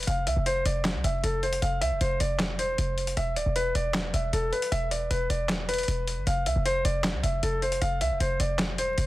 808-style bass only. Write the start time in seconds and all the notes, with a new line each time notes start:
0.07 F1
0.27 C2
0.36 F1
0.65 F1
0.94 C2
1.04 F1
1.23 F1
1.62 F1
1.82 C2
1.91 F1
2.01 F1
2.20 F1
2.59 E1
2.78 F1
3.17 E1
3.36 D1
3.46 E1
3.75 E1
4.14 E1
4.33 E1
4.72 E1
5.11 E1
5.30 E1
5.88 E1
6.17 G1
6.27 F1
6.46 C2
6.56 F1
6.85 F1
7.14 C2
7.24 F1
7.43 F1
7.82 F1
8.01 C2
8.11 F1
8.20 F1
8.40 F1
8.78 E1
8.98 F1